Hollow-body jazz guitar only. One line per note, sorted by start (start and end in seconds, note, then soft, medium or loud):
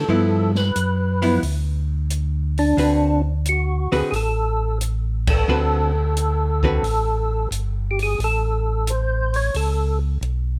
0.09 0.50 F3 medium
0.09 0.51 B3 medium
0.09 0.51 E4 medium
1.22 1.41 F3 medium
1.22 1.41 B3 medium
1.22 1.42 E4 medium
2.78 3.20 D3 medium
2.78 3.20 C4 medium
2.78 3.20 F#4 medium
2.78 3.21 B4 medium
3.92 4.11 D3 medium
3.92 4.11 C4 medium
3.92 4.11 F#4 medium
3.92 4.12 B4 medium
5.48 5.91 D3 medium
5.48 5.91 C4 medium
5.48 5.91 F#4 medium
5.48 5.91 B4 medium
6.64 6.82 D3 medium
6.64 6.82 C4 medium
6.64 6.83 F#4 medium
6.64 6.83 B4 medium